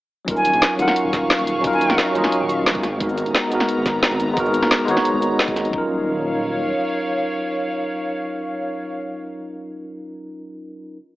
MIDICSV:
0, 0, Header, 1, 6, 480
1, 0, Start_track
1, 0, Key_signature, -6, "minor"
1, 0, Tempo, 340909
1, 391, Time_signature, 4, 2, 24, 8
1, 15713, End_track
2, 0, Start_track
2, 0, Title_t, "Flute"
2, 0, Program_c, 0, 73
2, 513, Note_on_c, 0, 80, 96
2, 1088, Note_off_c, 0, 80, 0
2, 1110, Note_on_c, 0, 78, 83
2, 1472, Note_off_c, 0, 78, 0
2, 2431, Note_on_c, 0, 80, 95
2, 2912, Note_off_c, 0, 80, 0
2, 15713, End_track
3, 0, Start_track
3, 0, Title_t, "Analog synth pad"
3, 0, Program_c, 1, 89
3, 390, Note_on_c, 1, 85, 85
3, 391, Note_on_c, 1, 77, 81
3, 3955, Note_off_c, 1, 85, 0
3, 3956, Note_off_c, 1, 77, 0
3, 3991, Note_on_c, 1, 59, 77
3, 3992, Note_on_c, 1, 82, 84
3, 8031, Note_off_c, 1, 59, 0
3, 8031, Note_off_c, 1, 82, 0
3, 8070, Note_on_c, 1, 73, 78
3, 8072, Note_on_c, 1, 77, 74
3, 12546, Note_off_c, 1, 73, 0
3, 12548, Note_off_c, 1, 77, 0
3, 15713, End_track
4, 0, Start_track
4, 0, Title_t, "Tine electric piano"
4, 0, Program_c, 2, 4
4, 346, Note_on_c, 2, 54, 75
4, 370, Note_on_c, 2, 61, 71
4, 392, Note_on_c, 2, 63, 67
4, 414, Note_on_c, 2, 65, 71
4, 437, Note_on_c, 2, 70, 78
4, 652, Control_c, 2, 64, 127
4, 1051, Note_off_c, 2, 54, 0
4, 1068, Note_on_c, 2, 54, 73
4, 1072, Note_off_c, 2, 61, 0
4, 1083, Note_off_c, 2, 63, 0
4, 1091, Note_on_c, 2, 61, 67
4, 1095, Note_off_c, 2, 65, 0
4, 1106, Note_off_c, 2, 70, 0
4, 1114, Note_on_c, 2, 63, 67
4, 1136, Note_on_c, 2, 65, 72
4, 1160, Note_on_c, 2, 70, 85
4, 2249, Note_off_c, 2, 54, 0
4, 2266, Note_on_c, 2, 54, 92
4, 2273, Note_off_c, 2, 61, 0
4, 2284, Note_off_c, 2, 63, 0
4, 2288, Note_on_c, 2, 61, 88
4, 2295, Note_off_c, 2, 65, 0
4, 2307, Note_off_c, 2, 70, 0
4, 2312, Note_on_c, 2, 63, 90
4, 2335, Note_on_c, 2, 65, 87
4, 2356, Note_on_c, 2, 70, 100
4, 2967, Note_off_c, 2, 54, 0
4, 2984, Note_on_c, 2, 54, 94
4, 2992, Note_off_c, 2, 61, 0
4, 3003, Note_off_c, 2, 63, 0
4, 3007, Note_on_c, 2, 61, 91
4, 3015, Note_off_c, 2, 65, 0
4, 3026, Note_off_c, 2, 70, 0
4, 3028, Note_on_c, 2, 63, 88
4, 3052, Note_on_c, 2, 65, 87
4, 3075, Note_on_c, 2, 75, 101
4, 3954, Note_off_c, 2, 54, 0
4, 3965, Note_off_c, 2, 61, 0
4, 3976, Note_off_c, 2, 63, 0
4, 3987, Note_off_c, 2, 65, 0
4, 3999, Note_off_c, 2, 75, 0
4, 4011, Control_c, 2, 64, 0
4, 4185, Note_on_c, 2, 56, 76
4, 4207, Note_on_c, 2, 59, 70
4, 4230, Note_on_c, 2, 63, 69
4, 4253, Note_on_c, 2, 66, 68
4, 4276, Note_on_c, 2, 70, 83
4, 4284, Control_c, 2, 64, 127
4, 4888, Note_off_c, 2, 56, 0
4, 4905, Note_on_c, 2, 56, 75
4, 4911, Note_off_c, 2, 59, 0
4, 4923, Note_off_c, 2, 63, 0
4, 4930, Note_on_c, 2, 59, 70
4, 4934, Note_off_c, 2, 66, 0
4, 4945, Note_off_c, 2, 70, 0
4, 4951, Note_on_c, 2, 63, 69
4, 4975, Note_on_c, 2, 66, 71
4, 4997, Note_on_c, 2, 70, 85
4, 6087, Note_off_c, 2, 56, 0
4, 6104, Note_on_c, 2, 56, 95
4, 6109, Note_off_c, 2, 59, 0
4, 6123, Note_off_c, 2, 63, 0
4, 6126, Note_on_c, 2, 59, 86
4, 6135, Note_off_c, 2, 66, 0
4, 6146, Note_off_c, 2, 70, 0
4, 6149, Note_on_c, 2, 63, 88
4, 6172, Note_on_c, 2, 66, 90
4, 6195, Note_on_c, 2, 70, 107
4, 6808, Note_off_c, 2, 56, 0
4, 6825, Note_on_c, 2, 56, 101
4, 6830, Note_off_c, 2, 59, 0
4, 6842, Note_off_c, 2, 63, 0
4, 6847, Note_on_c, 2, 59, 89
4, 6853, Note_off_c, 2, 66, 0
4, 6865, Note_off_c, 2, 70, 0
4, 6871, Note_on_c, 2, 63, 93
4, 6892, Note_on_c, 2, 66, 88
4, 6915, Note_on_c, 2, 73, 106
4, 8002, Note_on_c, 2, 54, 82
4, 8020, Note_off_c, 2, 56, 0
4, 8031, Note_off_c, 2, 59, 0
4, 8035, Note_on_c, 2, 61, 75
4, 8043, Note_off_c, 2, 63, 0
4, 8054, Note_off_c, 2, 66, 0
4, 8065, Note_off_c, 2, 73, 0
4, 8069, Note_on_c, 2, 63, 74
4, 8090, Control_c, 2, 64, 0
4, 8103, Note_on_c, 2, 65, 77
4, 8138, Note_on_c, 2, 70, 86
4, 8322, Control_c, 2, 64, 127
4, 12478, Note_off_c, 2, 54, 0
4, 12512, Note_off_c, 2, 61, 0
4, 12545, Note_off_c, 2, 63, 0
4, 12580, Note_off_c, 2, 65, 0
4, 12614, Note_off_c, 2, 70, 0
4, 15452, Control_c, 2, 64, 0
4, 15713, End_track
5, 0, Start_track
5, 0, Title_t, "Detuned saw bass"
5, 0, Program_c, 3, 39
5, 392, Note_on_c, 3, 27, 103
5, 734, Note_off_c, 3, 27, 0
5, 755, Note_on_c, 3, 34, 84
5, 861, Note_off_c, 3, 34, 0
5, 1113, Note_on_c, 3, 27, 88
5, 1222, Note_off_c, 3, 27, 0
5, 1474, Note_on_c, 3, 27, 88
5, 1689, Note_off_c, 3, 27, 0
5, 1714, Note_on_c, 3, 27, 100
5, 1820, Note_off_c, 3, 27, 0
5, 1953, Note_on_c, 3, 27, 97
5, 2293, Note_off_c, 3, 27, 0
5, 2313, Note_on_c, 3, 27, 106
5, 2654, Note_off_c, 3, 27, 0
5, 2674, Note_on_c, 3, 34, 88
5, 2781, Note_off_c, 3, 34, 0
5, 3033, Note_on_c, 3, 27, 85
5, 3141, Note_off_c, 3, 27, 0
5, 3393, Note_on_c, 3, 27, 86
5, 3609, Note_off_c, 3, 27, 0
5, 3633, Note_on_c, 3, 27, 99
5, 3872, Note_on_c, 3, 32, 103
5, 3893, Note_off_c, 3, 27, 0
5, 4212, Note_off_c, 3, 32, 0
5, 4231, Note_on_c, 3, 32, 104
5, 4573, Note_off_c, 3, 32, 0
5, 4590, Note_on_c, 3, 27, 88
5, 4698, Note_off_c, 3, 27, 0
5, 4950, Note_on_c, 3, 32, 87
5, 5060, Note_off_c, 3, 32, 0
5, 5311, Note_on_c, 3, 32, 94
5, 5528, Note_off_c, 3, 32, 0
5, 5551, Note_on_c, 3, 32, 96
5, 5659, Note_off_c, 3, 32, 0
5, 5790, Note_on_c, 3, 32, 105
5, 6131, Note_off_c, 3, 32, 0
5, 6151, Note_on_c, 3, 32, 103
5, 6493, Note_off_c, 3, 32, 0
5, 6511, Note_on_c, 3, 27, 89
5, 6619, Note_off_c, 3, 27, 0
5, 6870, Note_on_c, 3, 32, 84
5, 6980, Note_off_c, 3, 32, 0
5, 7230, Note_on_c, 3, 32, 84
5, 7447, Note_off_c, 3, 32, 0
5, 7472, Note_on_c, 3, 32, 101
5, 7579, Note_off_c, 3, 32, 0
5, 7713, Note_on_c, 3, 32, 103
5, 8053, Note_off_c, 3, 32, 0
5, 8071, Note_on_c, 3, 27, 98
5, 9455, Note_off_c, 3, 27, 0
5, 15713, End_track
6, 0, Start_track
6, 0, Title_t, "Drums"
6, 392, Note_on_c, 9, 36, 114
6, 392, Note_on_c, 9, 42, 100
6, 513, Note_on_c, 9, 69, 27
6, 533, Note_off_c, 9, 36, 0
6, 533, Note_off_c, 9, 42, 0
6, 632, Note_off_c, 9, 69, 0
6, 632, Note_on_c, 9, 42, 73
6, 632, Note_on_c, 9, 69, 60
6, 753, Note_off_c, 9, 42, 0
6, 753, Note_on_c, 9, 42, 39
6, 772, Note_off_c, 9, 69, 0
6, 872, Note_off_c, 9, 42, 0
6, 872, Note_on_c, 9, 38, 116
6, 872, Note_on_c, 9, 42, 95
6, 1012, Note_off_c, 9, 38, 0
6, 1012, Note_off_c, 9, 42, 0
6, 1113, Note_on_c, 9, 42, 69
6, 1113, Note_on_c, 9, 69, 58
6, 1234, Note_on_c, 9, 40, 60
6, 1254, Note_off_c, 9, 42, 0
6, 1254, Note_off_c, 9, 69, 0
6, 1353, Note_on_c, 9, 42, 95
6, 1353, Note_on_c, 9, 69, 28
6, 1375, Note_off_c, 9, 40, 0
6, 1493, Note_off_c, 9, 42, 0
6, 1493, Note_off_c, 9, 69, 0
6, 1591, Note_on_c, 9, 36, 106
6, 1592, Note_on_c, 9, 38, 37
6, 1592, Note_on_c, 9, 42, 69
6, 1592, Note_on_c, 9, 69, 62
6, 1732, Note_off_c, 9, 36, 0
6, 1733, Note_off_c, 9, 38, 0
6, 1733, Note_off_c, 9, 42, 0
6, 1733, Note_off_c, 9, 69, 0
6, 1831, Note_on_c, 9, 38, 121
6, 1831, Note_on_c, 9, 42, 94
6, 1953, Note_off_c, 9, 42, 0
6, 1953, Note_on_c, 9, 42, 38
6, 1972, Note_off_c, 9, 38, 0
6, 2072, Note_off_c, 9, 42, 0
6, 2072, Note_on_c, 9, 42, 69
6, 2072, Note_on_c, 9, 69, 56
6, 2213, Note_off_c, 9, 42, 0
6, 2213, Note_off_c, 9, 69, 0
6, 2311, Note_on_c, 9, 36, 119
6, 2311, Note_on_c, 9, 42, 95
6, 2432, Note_on_c, 9, 69, 26
6, 2452, Note_off_c, 9, 36, 0
6, 2452, Note_off_c, 9, 42, 0
6, 2550, Note_off_c, 9, 69, 0
6, 2550, Note_on_c, 9, 42, 67
6, 2550, Note_on_c, 9, 69, 60
6, 2671, Note_off_c, 9, 42, 0
6, 2671, Note_on_c, 9, 40, 57
6, 2671, Note_on_c, 9, 42, 39
6, 2691, Note_off_c, 9, 69, 0
6, 2789, Note_off_c, 9, 42, 0
6, 2789, Note_on_c, 9, 38, 120
6, 2789, Note_on_c, 9, 42, 91
6, 2812, Note_off_c, 9, 40, 0
6, 2930, Note_off_c, 9, 38, 0
6, 2930, Note_off_c, 9, 42, 0
6, 3031, Note_on_c, 9, 42, 66
6, 3031, Note_on_c, 9, 69, 58
6, 3151, Note_on_c, 9, 40, 59
6, 3172, Note_off_c, 9, 42, 0
6, 3172, Note_off_c, 9, 69, 0
6, 3270, Note_on_c, 9, 42, 89
6, 3270, Note_on_c, 9, 69, 28
6, 3292, Note_off_c, 9, 40, 0
6, 3411, Note_off_c, 9, 42, 0
6, 3411, Note_off_c, 9, 69, 0
6, 3511, Note_on_c, 9, 42, 69
6, 3511, Note_on_c, 9, 69, 57
6, 3651, Note_off_c, 9, 42, 0
6, 3651, Note_off_c, 9, 69, 0
6, 3750, Note_on_c, 9, 38, 126
6, 3750, Note_on_c, 9, 42, 92
6, 3871, Note_off_c, 9, 42, 0
6, 3871, Note_on_c, 9, 42, 37
6, 3872, Note_on_c, 9, 36, 107
6, 3891, Note_off_c, 9, 38, 0
6, 3990, Note_off_c, 9, 42, 0
6, 3990, Note_on_c, 9, 40, 36
6, 3990, Note_on_c, 9, 42, 63
6, 3990, Note_on_c, 9, 69, 55
6, 4013, Note_off_c, 9, 36, 0
6, 4131, Note_off_c, 9, 40, 0
6, 4131, Note_off_c, 9, 42, 0
6, 4131, Note_off_c, 9, 69, 0
6, 4230, Note_on_c, 9, 36, 117
6, 4230, Note_on_c, 9, 42, 93
6, 4352, Note_on_c, 9, 69, 25
6, 4371, Note_off_c, 9, 36, 0
6, 4371, Note_off_c, 9, 42, 0
6, 4471, Note_off_c, 9, 69, 0
6, 4471, Note_on_c, 9, 42, 65
6, 4471, Note_on_c, 9, 69, 57
6, 4592, Note_off_c, 9, 42, 0
6, 4592, Note_on_c, 9, 42, 38
6, 4612, Note_off_c, 9, 69, 0
6, 4711, Note_off_c, 9, 42, 0
6, 4711, Note_on_c, 9, 38, 126
6, 4711, Note_on_c, 9, 42, 96
6, 4851, Note_off_c, 9, 38, 0
6, 4851, Note_off_c, 9, 42, 0
6, 4951, Note_on_c, 9, 42, 66
6, 4951, Note_on_c, 9, 69, 57
6, 5072, Note_on_c, 9, 40, 59
6, 5091, Note_off_c, 9, 42, 0
6, 5091, Note_off_c, 9, 69, 0
6, 5190, Note_on_c, 9, 42, 86
6, 5190, Note_on_c, 9, 69, 26
6, 5213, Note_off_c, 9, 40, 0
6, 5331, Note_off_c, 9, 42, 0
6, 5331, Note_off_c, 9, 69, 0
6, 5430, Note_on_c, 9, 36, 109
6, 5430, Note_on_c, 9, 38, 40
6, 5430, Note_on_c, 9, 42, 62
6, 5430, Note_on_c, 9, 69, 58
6, 5571, Note_off_c, 9, 36, 0
6, 5571, Note_off_c, 9, 38, 0
6, 5571, Note_off_c, 9, 42, 0
6, 5571, Note_off_c, 9, 69, 0
6, 5669, Note_on_c, 9, 38, 127
6, 5669, Note_on_c, 9, 42, 93
6, 5791, Note_off_c, 9, 42, 0
6, 5791, Note_on_c, 9, 42, 35
6, 5810, Note_off_c, 9, 38, 0
6, 5910, Note_off_c, 9, 42, 0
6, 5910, Note_on_c, 9, 42, 64
6, 5910, Note_on_c, 9, 69, 56
6, 6051, Note_off_c, 9, 42, 0
6, 6051, Note_off_c, 9, 69, 0
6, 6151, Note_on_c, 9, 36, 122
6, 6151, Note_on_c, 9, 42, 90
6, 6274, Note_on_c, 9, 69, 24
6, 6291, Note_off_c, 9, 42, 0
6, 6292, Note_off_c, 9, 36, 0
6, 6392, Note_off_c, 9, 69, 0
6, 6392, Note_on_c, 9, 42, 66
6, 6392, Note_on_c, 9, 69, 60
6, 6512, Note_off_c, 9, 42, 0
6, 6512, Note_on_c, 9, 40, 57
6, 6512, Note_on_c, 9, 42, 36
6, 6533, Note_off_c, 9, 69, 0
6, 6631, Note_off_c, 9, 42, 0
6, 6631, Note_on_c, 9, 38, 123
6, 6631, Note_on_c, 9, 42, 89
6, 6653, Note_off_c, 9, 40, 0
6, 6772, Note_off_c, 9, 38, 0
6, 6772, Note_off_c, 9, 42, 0
6, 6873, Note_on_c, 9, 42, 62
6, 6873, Note_on_c, 9, 69, 57
6, 6994, Note_on_c, 9, 40, 57
6, 7014, Note_off_c, 9, 42, 0
6, 7014, Note_off_c, 9, 69, 0
6, 7113, Note_on_c, 9, 42, 88
6, 7113, Note_on_c, 9, 69, 27
6, 7135, Note_off_c, 9, 40, 0
6, 7254, Note_off_c, 9, 42, 0
6, 7254, Note_off_c, 9, 69, 0
6, 7352, Note_on_c, 9, 42, 60
6, 7352, Note_on_c, 9, 69, 59
6, 7493, Note_off_c, 9, 42, 0
6, 7493, Note_off_c, 9, 69, 0
6, 7593, Note_on_c, 9, 38, 121
6, 7593, Note_on_c, 9, 42, 90
6, 7712, Note_on_c, 9, 36, 105
6, 7714, Note_off_c, 9, 42, 0
6, 7714, Note_on_c, 9, 42, 34
6, 7733, Note_off_c, 9, 38, 0
6, 7833, Note_off_c, 9, 42, 0
6, 7833, Note_on_c, 9, 40, 36
6, 7833, Note_on_c, 9, 42, 63
6, 7833, Note_on_c, 9, 69, 57
6, 7853, Note_off_c, 9, 36, 0
6, 7955, Note_off_c, 9, 42, 0
6, 7955, Note_on_c, 9, 42, 36
6, 7974, Note_off_c, 9, 40, 0
6, 7974, Note_off_c, 9, 69, 0
6, 8071, Note_on_c, 9, 36, 113
6, 8095, Note_off_c, 9, 42, 0
6, 8212, Note_off_c, 9, 36, 0
6, 15713, End_track
0, 0, End_of_file